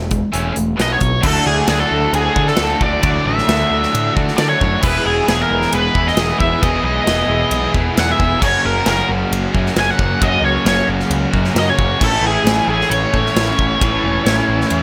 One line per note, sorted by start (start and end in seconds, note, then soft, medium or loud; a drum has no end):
0.00 0.22 E1 medium
0.11 0.31 E3 medium
0.11 0.32 G#3 medium
0.11 kick medium
0.11 closed hi-hat medium
0.32 0.50 E1 medium
0.32 0.53 E3 medium
0.32 0.53 A3 medium
0.32 0.55 C#4 loud
0.32 closed hi-hat medium
0.54 0.73 E1 medium
0.54 0.76 E3 medium
0.54 0.76 A3 medium
0.54 closed hi-hat medium
0.76 0.96 B1 medium
0.76 0.98 B2 medium
0.76 0.98 F#3 medium
0.76 0.99 B3 medium
0.76 snare loud
0.76 closed hi-hat medium
0.81 0.92 D#5 medium
0.91 1.13 B3 medium
0.91 1.14 C4 medium
0.91 1.26 C#5 medium
0.96 1.20 B2 medium
0.96 1.21 F#3 medium
0.96 1.16 D4 medium
0.96 1.17 E4 medium
1.01 1.18 B1 medium
1.01 1.18 F4 medium
1.01 kick medium
1.01 closed hi-hat medium
1.06 1.20 G4 medium
1.06 1.21 A4 medium
1.06 1.22 B4 medium
1.13 1.24 C5 medium
1.13 1.25 D5 medium
1.19 1.38 D2 loud
1.19 1.66 D3 medium
1.19 1.66 F#3 loud
1.19 1.47 A3 loud
1.19 1.46 A4 medium
1.19 1.27 E5 medium
1.19 1.28 F5 medium
1.19 crash loud
1.23 1.45 D4 loud
1.23 4.79 D4 medium
1.23 4.79 E4 medium
1.23 1.43 F#4 loud
1.23 4.80 F#4 medium
1.23 kick loud
1.44 1.61 D2 medium
1.44 1.67 A3 medium
1.44 1.67 D4 medium
1.44 1.68 F#4 medium
1.44 1.67 G#4 medium
1.66 1.83 D2 loud
1.66 3.01 D3 medium
1.66 2.55 F#3 medium
1.66 1.90 A3 medium
1.66 1.89 D4 medium
1.66 1.87 F#4 loud
1.66 1.79 G#4 medium
1.66 snare loud
1.66 ride bell medium
1.79 2.14 A4 medium
1.87 2.35 A3 medium
1.87 2.34 D4 medium
1.87 2.32 F#4 medium
1.91 2.06 D2 medium
2.13 2.28 D2 loud
2.13 2.48 G#4 medium
2.13 ride bell medium
2.33 2.51 D3 medium
2.33 2.55 A3 medium
2.33 2.56 D4 medium
2.33 2.57 F#4 medium
2.33 kick medium
2.47 2.83 A4 medium
2.47 snare soft
2.56 2.73 D2 medium
2.56 3.01 D3 medium
2.56 3.01 F#3 medium
2.56 3.01 A3 medium
2.56 3.02 D4 medium
2.56 3.03 F#4 medium
2.56 snare loud
2.56 ride bell medium
2.81 2.96 D2 medium
2.81 3.03 A3 medium
2.81 3.03 D4 medium
2.81 3.04 F#4 medium
2.81 3.02 D5 loud
2.81 kick medium
3.01 3.18 D2 medium
3.01 3.45 D3 medium
3.01 3.46 F#3 loud
3.01 3.26 A3 medium
3.01 3.25 D4 loud
3.01 3.23 F#4 loud
3.01 3.26 D5 loud
3.01 kick loud
3.01 ride bell medium
3.24 3.41 A1 medium
3.24 3.47 A3 medium
3.24 3.47 D4 medium
3.24 3.47 F#4 medium
3.24 4.12 E5 loud
3.38 snare soft
3.46 3.63 D2 loud
3.46 3.92 D3 medium
3.46 3.93 F#3 medium
3.46 3.72 A3 medium
3.46 3.70 D4 medium
3.46 3.69 F#4 medium
3.46 snare loud
3.46 ride bell medium
3.70 3.85 D2 medium
3.70 4.14 A3 medium
3.70 4.13 D4 medium
3.70 4.11 F#4 medium
3.83 snare soft
3.94 4.09 A2 loud
3.94 ride bell medium
4.12 4.31 D3 medium
4.12 4.36 A3 medium
4.12 4.37 D4 medium
4.12 4.38 F#4 medium
4.17 kick medium
4.28 snare soft
4.36 4.53 D3 loud
4.36 4.82 D3 medium
4.36 4.80 F#3 medium
4.36 4.81 A3 medium
4.36 4.82 D4 medium
4.36 4.82 F#4 medium
4.36 4.49 D5 medium
4.36 snare loud
4.36 ride bell medium
4.49 4.81 C#5 loud
4.60 4.75 F#2 medium
4.60 4.83 A3 medium
4.60 4.82 D4 medium
4.60 4.81 F#4 medium
4.60 kick medium
4.80 4.97 E1 loud
4.80 6.60 E2 medium
4.80 6.61 B2 medium
4.80 5.25 E3 medium
4.80 5.05 B3 medium
4.80 5.04 E4 loud
4.80 8.39 E4 medium
4.80 5.02 G#4 loud
4.80 8.39 G#4 medium
4.80 5.06 B4 medium
4.80 kick loud
4.80 crash loud
4.84 6.62 E3 medium
4.84 5.29 G#3 medium
4.84 8.39 B3 medium
5.02 5.20 E1 medium
5.02 5.26 B3 medium
5.02 5.27 E4 medium
5.02 5.28 G#4 medium
5.02 5.29 G#4 medium
5.25 5.43 E1 medium
5.25 6.15 E3 medium
5.25 5.97 G#3 medium
5.25 5.52 B3 medium
5.25 5.51 E4 medium
5.25 5.49 G#4 medium
5.25 snare loud
5.25 ride bell medium
5.31 5.40 G#4 medium
5.42 5.72 A#4 medium
5.50 5.65 E1 medium
5.50 5.95 B3 medium
5.50 5.94 E4 medium
5.50 5.94 G#4 medium
5.62 snare soft
5.73 5.88 E1 loud
5.73 6.08 B4 loud
5.73 ride bell medium
5.94 6.10 E2 medium
5.94 6.16 G#3 medium
5.94 6.15 B3 medium
5.94 6.16 E4 medium
5.94 6.18 G#4 medium
5.94 kick medium
6.07 6.39 D#5 loud
6.07 snare soft
6.15 6.31 E1 medium
6.15 6.60 E3 medium
6.15 6.41 G#3 medium
6.15 6.62 B3 medium
6.15 6.62 E4 medium
6.15 6.64 G#4 medium
6.15 snare loud
6.15 ride bell medium
6.39 6.55 E1 medium
6.39 6.61 G#3 medium
6.39 6.61 B3 medium
6.39 6.61 E4 medium
6.39 6.63 E5 loud
6.39 kick loud
6.61 6.77 E1 loud
6.61 8.39 E2 medium
6.61 8.41 B2 medium
6.61 7.03 E3 loud
6.61 7.08 G#3 loud
6.61 6.84 B3 medium
6.61 6.83 E4 medium
6.61 6.82 G#4 loud
6.61 6.84 D#5 loud
6.61 kick loud
6.61 ride bell medium
6.65 8.42 E3 loud
6.83 6.98 B1 medium
6.83 7.05 B3 medium
6.83 7.05 E4 medium
6.83 7.06 G#4 medium
6.83 7.71 D#5 medium
7.04 7.22 E1 medium
7.04 7.51 E3 medium
7.04 7.75 G#3 medium
7.04 7.28 B3 medium
7.04 7.27 E4 medium
7.04 7.26 G#4 loud
7.04 snare loud
7.04 ride bell medium
7.27 7.43 E1 medium
7.27 7.73 B3 medium
7.27 7.71 E4 medium
7.27 7.71 G#4 medium
7.51 7.66 B1 loud
7.51 ride bell medium
7.71 7.89 E2 medium
7.71 7.94 B3 soft
7.71 7.95 E4 medium
7.71 7.97 G#4 medium
7.71 kick medium
7.75 7.96 G#3 medium
7.94 8.12 E2 medium
7.94 8.38 E3 medium
7.94 8.19 G#3 medium
7.94 8.39 B3 medium
7.94 8.40 E4 medium
7.94 8.41 G#4 medium
7.94 snare loud
7.94 ride bell medium
7.99 8.11 F#5 loud
8.11 8.44 E5 loud
8.17 8.34 E1 medium
8.17 8.40 G#3 medium
8.17 8.40 B3 medium
8.17 8.39 E4 medium
8.17 kick medium
8.39 8.57 F#1 medium
8.39 10.19 F#2 medium
8.39 10.20 C#3 medium
8.39 8.84 F#3 medium
8.39 8.64 A#3 loud
8.39 11.96 A#3 medium
8.39 8.63 C#4 medium
8.39 11.97 F#4 medium
8.39 8.61 F#4 loud
8.39 11.97 G#4 medium
8.39 8.65 C#5 medium
8.39 kick loud
8.39 crash loud
8.44 10.21 F#3 medium
8.62 8.79 F#1 medium
8.62 8.85 A#3 medium
8.62 8.86 C#4 medium
8.62 8.87 F#4 medium
8.62 8.86 A#4 medium
8.84 9.01 F#1 medium
8.84 9.74 F#3 medium
8.84 9.09 A#3 medium
8.84 9.08 C#4 medium
8.84 9.07 F#4 medium
8.84 9.08 A#4 medium
8.84 snare loud
8.84 ride bell medium
9.07 9.24 F#1 medium
9.07 9.53 A#3 medium
9.07 9.53 C#4 medium
9.07 9.51 F#4 medium
9.31 9.46 F#1 loud
9.31 ride bell medium
9.52 9.69 F#2 medium
9.52 9.75 A#3 medium
9.52 9.76 C#4 medium
9.52 9.76 F#4 medium
9.52 kick medium
9.66 snare soft
9.74 9.91 F#1 medium
9.74 10.18 F#3 medium
9.74 10.20 A#3 medium
9.74 10.21 C#4 medium
9.74 10.21 F#4 medium
9.74 snare loud
9.74 ride bell medium
9.80 9.90 G#5 loud
9.90 10.24 F#5 loud
9.98 10.14 F#1 medium
9.98 10.21 A#3 medium
9.98 10.22 C#4 medium
9.98 10.22 F#4 medium
9.98 kick medium
10.19 10.36 F#1 loud
10.19 11.99 F#2 medium
10.19 11.99 C#3 loud
10.19 10.63 F#3 medium
10.19 10.44 A#3 medium
10.19 10.44 C#4 medium
10.19 10.41 F#4 loud
10.19 10.45 D#5 medium
10.19 kick loud
10.19 ride bell medium
10.25 12.01 F#3 loud
10.41 10.57 C#2 medium
10.41 10.64 A#3 medium
10.41 10.65 C#4 medium
10.41 10.66 F#4 medium
10.41 10.65 C#5 medium
10.64 10.80 F#1 loud
10.64 11.10 F#3 medium
10.64 10.88 A#3 medium
10.64 10.88 C#4 medium
10.64 10.85 F#4 medium
10.64 10.87 C#5 medium
10.64 snare loud
10.64 ride bell medium
10.87 11.03 F#1 medium
10.87 11.33 A#3 medium
10.87 11.33 C#4 medium
10.87 11.30 F#4 medium
11.00 snare soft
11.10 11.25 C#2 loud
11.10 ride bell medium
11.31 11.48 F#2 medium
11.31 11.53 A#3 medium
11.31 11.55 C#4 medium
11.31 11.55 F#4 medium
11.31 kick medium
11.44 snare soft
11.53 11.70 F#2 medium
11.53 11.98 F#3 medium
11.53 11.99 A#3 medium
11.53 12.00 C#4 medium
11.53 12.00 F#4 medium
11.53 snare loud
11.53 ride bell medium
11.59 11.69 D#5 loud
11.69 12.02 C#5 loud
11.78 11.93 F#1 medium
11.78 12.01 A#3 medium
11.78 12.03 C#4 medium
11.78 11.99 F#4 medium
11.78 kick loud
11.98 12.16 A1 medium
11.98 12.42 A2 loud
11.98 12.43 E3 loud
11.98 12.23 A3 loud
11.98 12.22 C#4 loud
11.98 12.20 E4 loud
11.98 12.16 A#4 medium
11.98 kick loud
11.98 crash loud
12.03 12.17 D4 medium
12.03 12.17 F4 medium
12.03 12.25 A4 loud
12.17 14.83 A3 medium
12.17 14.83 C#4 medium
12.17 14.83 E4 medium
12.21 12.37 A1 medium
12.21 12.43 A3 medium
12.21 12.44 C#4 medium
12.21 12.45 E4 medium
12.27 12.68 G#4 loud
12.42 12.59 A1 loud
12.42 13.77 A2 medium
12.42 13.33 E3 medium
12.42 12.69 A3 medium
12.42 12.67 C#4 loud
12.42 12.65 E4 medium
12.47 snare loud
12.47 ride bell medium
12.66 12.82 A1 medium
12.66 13.12 A3 medium
12.66 13.11 C#4 medium
12.66 13.10 E4 medium
12.66 12.92 G#4 medium
12.81 snare soft
12.90 13.05 A1 loud
12.90 14.83 C#5 loud
12.90 ride bell medium
13.10 13.28 A2 medium
13.10 13.34 A3 medium
13.10 13.35 C#4 medium
13.10 13.36 E4 medium
13.10 kick medium
13.26 snare soft
13.34 13.50 A1 loud
13.34 13.77 E3 medium
13.34 13.78 A3 medium
13.34 13.78 C#4 medium
13.34 13.79 E4 medium
13.34 snare loud
13.34 ride bell medium
13.58 13.73 A1 medium
13.58 13.81 A3 medium
13.58 13.81 C#4 medium
13.58 13.82 E4 medium
13.58 kick loud
13.77 14.21 A2 medium
13.77 14.22 E3 medium
13.77 14.03 A3 loud
13.77 14.02 C#4 loud
13.77 14.00 E4 medium
13.81 13.96 A1 loud
13.81 kick loud
13.81 ride bell medium
14.01 14.18 E1 loud
14.01 14.23 A3 medium
14.01 14.24 C#4 medium
14.01 14.24 E4 medium
14.22 14.40 A1 medium
14.22 14.69 A2 medium
14.22 14.69 E3 medium
14.22 14.47 A3 medium
14.22 14.47 C#4 loud
14.22 14.45 E4 medium
14.26 14.83 A2 medium
14.26 14.83 E3 loud
14.26 14.83 A3 loud
14.26 14.83 E4 loud
14.26 snare loud
14.26 ride bell medium
14.46 14.63 A1 medium
14.46 14.83 A3 medium
14.46 14.83 C#4 medium
14.46 14.83 E4 medium
14.61 snare soft
14.70 14.83 E2 medium
14.70 ride bell medium